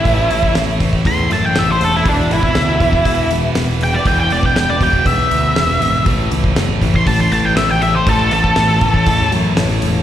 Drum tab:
HH |o-o-o-o-o-o-o-o-|o-o-o-o-o-o-o-o-|o-o-o-o-o-o-o-o-|o-o-o-o-o-o-o-o-|
SD |----o-------o---|----o-------o---|----o-------o---|----o-------o---|
BD |o--o--ooo-------|o--o--ooo-------|o--o--ooo-------|o--o--ooo-------|

HH |o-o-o-o-o-o-o-o-|
SD |----o-------o---|
BD |o--o--ooo-------|